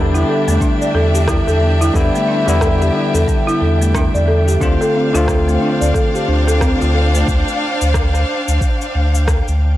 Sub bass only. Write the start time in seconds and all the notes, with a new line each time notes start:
Already playing: E2
0.48 E2
0.94 E2
1.48 E2
1.94 E2
2.48 E2
3.14 E2
3.61 E2
4.14 E2
4.62 D2
5.15 D2
5.81 D2
6.28 D2
6.81 D2
7.28 D2
7.82 D2
8.48 D2
8.95 D2
9.48 D2